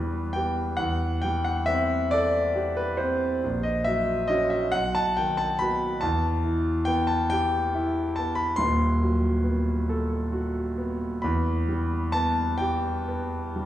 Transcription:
Already playing: E2 G3 B4
0.33 B3 G4 G5
0.77 E2 F#5
1.22 G3 G5
1.45 F#5
1.66 C4 E5
2.11 A4 D5
2.55 G4
2.77 B4
2.97 C4 C5
3.44 A#1
3.63 D#5
3.84 F#3 E5
4.27 C#4 F#4 D#5
4.50 E5
4.72 B1 F#5
4.95 A5
5.17 D#3 G5
5.37 A5
5.59 B3 F#4 B5
6.01 E2 A5
6.44 E3
6.85 B3 G5
7.07 A5
7.30 G4 G5
7.75 E4
8.16 B3 A5
8.35 B5
8.56 D#1 D#2 C6
9.02 F#3
9.43 B3
9.89 A4
10.32 F#4
10.78 B3
11.22 E2 B5
11.69 G3
12.12 B3 A5
12.58 G4 G5
13.08 B3
13.56 G3

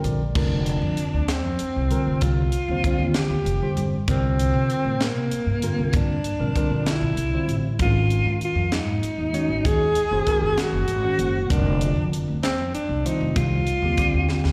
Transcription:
Already playing: D3 G3 C4 F4 A#4
0.04 A#1 D5, closed hi-hat
0.35 F1 D3 G3 C4 D4 F4 A#4, kick, crash
0.66 closed hi-hat
0.82 F2
0.97 muted upright bass stroke, closed hi-hat
1.14 D2
1.28 C4, snare, closed hi-hat
1.45 F2
1.59 muted upright bass stroke, closed hi-hat
1.76 C2
1.90 D3 G3 C4 F4 A#4, closed hi-hat
2.07 F1
2.21 C2 F4, kick, closed hi-hat
2.52 muted upright bass stroke, closed hi-hat
2.68 D#2 D3 G3 C4 F4 C5
2.84 D3 G3 C4 F4 C5, muted upright bass stroke, kick, closed hi-hat
2.98 D#2
3.14 G4, snare, closed hi-hat
3.30 D#2
3.45 F1, closed hi-hat
3.62 D3 G3 C4 F4 C5
3.77 G2, closed hi-hat
4.08 C2 D3 G3 C4 F4 A#4, kick, closed hi-hat
4.39 closed hi-hat
4.54 C3
4.69 muted upright bass stroke, closed hi-hat
4.84 A2
5.01 A#3, snare, closed hi-hat
5.16 C3
5.31 muted upright bass stroke, closed hi-hat
5.46 G2
5.62 D3 G3 C4 F4 A#4, closed hi-hat
5.78 C2
5.93 G2 D4, kick, closed hi-hat
6.24 muted upright bass stroke, closed hi-hat
6.39 A#1 D3 G3 C4 F4 A#4
6.55 D3 G3 C4 F4 A#4, muted upright bass stroke, kick, closed hi-hat
6.70 A#1
6.86 E4, snare, closed hi-hat
7.01 A#1
7.16 C2, closed hi-hat
7.33 D3 G3 C4 F4 C5
7.48 A1, closed hi-hat
7.79 G#1 D#3 F#3 G#3 C#4 F4 A#4, kick, closed hi-hat
8.10 closed hi-hat
8.25 G#2
8.40 muted upright bass stroke, closed hi-hat
8.44 F4
8.55 F2
8.72 D#4, snare, closed hi-hat
8.86 G#2
9.02 muted upright bass stroke, closed hi-hat
9.18 D#2
9.33 D#3 G#3 C#4 F#4 C#5, closed hi-hat
9.48 G#1
9.65 D#2 G#4, kick, closed hi-hat
9.95 muted upright bass stroke, closed hi-hat
10.11 F#1 D#3 G#3 C#4 F#4 C5
10.27 D#3 G#3 C#4 F#4 A#4, kick, closed hi-hat
10.42 F#1
10.58 F#4, snare, closed hi-hat
10.73 F#1
10.88 G#1, closed hi-hat
11.04 D#3 G#3 C#4 F#4 C5
11.19 F#1, closed hi-hat
11.50 F1 D3 G3 C4 D4 F4 A#4, kick, closed hi-hat
11.81 closed hi-hat
11.96 F2
12.12 muted upright bass stroke, closed hi-hat
12.28 D2
12.43 C4, snare, closed hi-hat
12.58 F2
12.74 D4, muted upright bass stroke, closed hi-hat
12.89 C2
13.05 D#3 G3 C4 D#4 F4 C5, closed hi-hat
13.21 F1
13.36 C2 F4, kick, closed hi-hat
13.66 muted upright bass stroke, closed hi-hat
13.82 D#2 D3 G3 C4 F4 G4
13.97 D3 G3 C4 F4 G4, muted upright bass stroke, kick, closed hi-hat
14.14 D#2
14.29 snare
14.44 D#2, snare

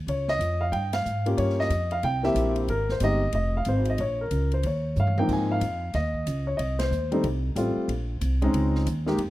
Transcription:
0.07 C#2 C#5, ride
0.28 D#5, snare
0.39 F2, hi-hat pedal, ride
0.61 F5
0.72 G2 G5, ride
0.93 F5, snare, ride
1.05 G#2, hi-hat pedal
1.26 A#3 C#4 F4 G4, ride
1.38 G2 C#5, ride
1.50 snare
1.60 D#5, snare
1.70 F2, hi-hat pedal, ride
1.91 F5, ride
2.03 C2 G5, ride
2.23 A#3 C4 E4 G4 E5, snare
2.34 A#1, hi-hat pedal, ride
2.56 ride
2.68 G#1 A#4, ride
2.89 C5, snare
3.00 G1 G#3 C4 D#4 G4 D#5, hi-hat pedal, ride
3.33 F1 D#5, ride
3.57 F5
3.65 G#1 C5, hi-hat pedal, ride
3.85 ride
3.90 D#5
3.98 A#1 C#5, ride
4.21 A#4
4.31 C#2, hi-hat pedal, ride
4.52 C5, ride
4.63 D#2 C#5, ride
4.96 G2 F5, hi-hat pedal, high tom
5.07 mid tom
5.18 G#2 F3 A#3 C4 D#4 G5, mid tom
5.28 G#2, kick, crash
5.33 G#5
5.52 F5
5.61 F2, hi-hat pedal, ride
5.94 D#2 D#5, snare, ride
6.14 kick
6.27 C#2, hi-hat pedal, ride
6.47 C#5
6.57 C2 D#5, ride
6.79 C5, snare, ride
6.91 D#2, hi-hat pedal
7.12 G3 A3 C4 D#4, ride
7.24 C2, ride
7.55 A1 G3 A3 C4 F4, hi-hat pedal, ride
7.76 muted upright bass stroke
7.88 A#1, ride
8.21 C2, hi-hat pedal, ride
8.42 G#3 C4 C#4 D#4, ride
8.53 C#2, ride
8.75 snare
8.86 D#2, hi-hat pedal, ride
9.06 G#3 A#3 D#4 G4, snare
9.18 F2, ride

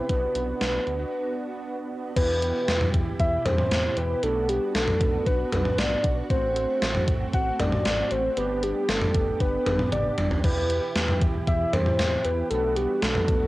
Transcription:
0.09 B1 B3 D4 F#4 B4, kick, closed hi-hat
0.35 B1, closed hi-hat
0.61 B1, snare, closed hi-hat
0.87 D2, closed hi-hat
2.16 E2 B2 E3 E4 G4 B4, kick, closed hi-hat, crash
2.42 closed hi-hat
2.68 E2, snare, closed hi-hat
2.81 mid tom
2.94 E2, kick, closed hi-hat
3.20 E2 E5, kick, closed hi-hat
3.46 E2 C5, closed hi-hat, mid tom, cowbell
3.58 mid tom
3.71 E2, snare, closed hi-hat
3.97 E2 B4, closed hi-hat
4.23 B1 B3 D4 F#4 A4, closed hi-hat
4.49 G4, closed hi-hat
4.75 B1 A4, snare, closed hi-hat
4.88 mid tom
5.01 B1, kick, closed hi-hat
5.27 B1 B4, kick, closed hi-hat
5.52 B1 B4, closed hi-hat, mid tom, cowbell
5.65 mid tom
5.78 B1 D5, snare, closed hi-hat
6.04 B1, kick, closed hi-hat
6.30 A1 A3 C4 F#4 C5, kick, closed hi-hat
6.56 closed hi-hat
6.82 A1, snare, closed hi-hat
6.95 mid tom
7.08 A1, kick, closed hi-hat
7.33 A1 F#5, kick, closed hi-hat
7.59 A1 D5, closed hi-hat, mid tom, cowbell
7.72 mid tom
7.85 A1, snare, closed hi-hat
8.11 A1 C5, closed hi-hat
8.37 G1 B3 D4 G4 B4, closed hi-hat
8.63 G4, closed hi-hat
8.89 G1 A4, snare, closed hi-hat
9.01 mid tom
9.14 G1, kick, closed hi-hat
9.40 G1 B4, kick, closed hi-hat
9.66 G1 B4, closed hi-hat, mid tom, cowbell
9.79 mid tom
9.92 G1 D5, closed hi-hat, high tom
10.18 G1, closed hi-hat, mid tom
10.31 floor tom
10.44 E2 B2 E3 E4 G4 B4, kick, crash
10.70 closed hi-hat
10.96 E2, snare, closed hi-hat
11.08 mid tom
11.21 E2, kick, closed hi-hat
11.47 E2 E5, kick, closed hi-hat
11.73 E2 C5, closed hi-hat, mid tom, cowbell
11.86 mid tom
11.99 E2, snare, closed hi-hat
12.25 E2 B4, closed hi-hat
12.50 B1 B3 D4 F#4 A4, closed hi-hat
12.76 G4, closed hi-hat
13.02 B1 A4, snare, closed hi-hat
13.15 mid tom
13.28 B1, kick, closed hi-hat

